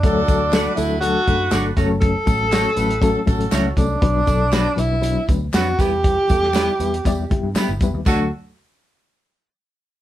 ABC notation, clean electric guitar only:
X:1
M:4/4
L:1/16
Q:1/4=119
K:D
V:1 name="Clean electric guitar"
z4 [DFAd] z6 z [DFAd] z [CFAc]2 | z4 [CFAc] z6 z [CFAc] z3 | z4 [B,DFB] z6 z [B,DFB] z [B,EGB]2 | z4 [B,EGB] z6 z [B,EGB] z3 |
[A,DFA]2 z12 z2 |]